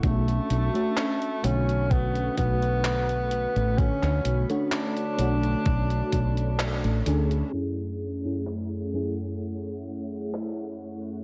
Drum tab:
HH |xxxxxxxxxxxxxxxx|xxxxxxxxxxxxxxxx|----------------|
CP |----x-------x---|-x--x-------x---|----x-------x---|
BD |o-------o-o-----|o-------o-o-----|----------------|